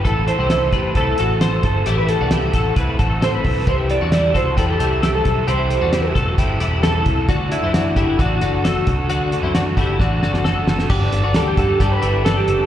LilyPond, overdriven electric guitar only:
\new Staff \with { instrumentName = "Overdriven electric guitar" } { \time 4/4 \key a \dorian \tempo 4 = 133 <a, e a c' e' a'>8 <a c' e' a'>8 <a, e a c' e' a'>8 <a c' e' a'>8 <a c' e' a'>8 <a c' e' a'>8 <a, e a c' e' a'>8 <a c' e' a'>8 | <a, e a c' e' a'>8 <a c' e' a'>8 <a, e a c' e' a'>8 <a c' e' a'>8 <a c' e' a'>8 <a c' e' a'>8 <a, e a c' e' a'>8 <a c' e' a'>8 | <c e g c' e' a'>8 <g c' e' a'>8 <c e g c' e' a'>8 <g c' e' a'>8 <g c' e' a'>8 <g c' e' a'>8 <c e g c' e' a'>8 <g c' e' a'>8 | <c e g c' e' a'>8 <g c' e' a'>8 <c e g c' e' a'>8 <g c' e' a'>8 <g c' e' a'>8 <g c' e' a'>8 <c e g c' e' a'>8 <g c' e' a'>8 |
<d a d' fis' a'>8 <d' fis' a'>8 <d a d' fis' a'>8 <d' fis' a'>8 <a d' fis' a'>8 <d' fis' a'>8 <d a d' fis' a'>8 <d' fis' a'>8 | <d a d' fis' a'>8 <d' fis' a'>8 <d a d' fis' a'>8 <d' fis' a'>8 <a d' fis' a'>8 <d' fis' a'>8 <d a d' fis' a'>8 <d' fis' a'>8 | <g d' g' a'>8 <d' g' a'>8 <g d' g' a'>8 <d' g' a'>8 <g d' g' a'>8 <d' g' a'>8 <g d' g' a'>8 <d' g' a'>8 | }